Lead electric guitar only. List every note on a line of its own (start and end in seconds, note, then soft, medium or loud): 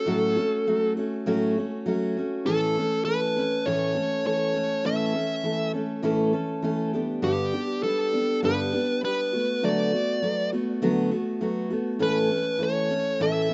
0.00 0.93 A4 loud
2.46 3.02 A4 medium
3.05 3.67 B4 medium
3.66 4.26 C#5 loud
4.27 4.86 C#5 medium
4.86 5.71 E5 loud
7.24 7.83 G4 medium
7.83 8.39 A4 medium
8.45 9.00 B4 loud
9.05 9.65 B4 loud
9.65 10.49 D5 loud
12.03 12.63 B4 loud
12.63 13.22 C#5 loud
13.22 13.54 E5 loud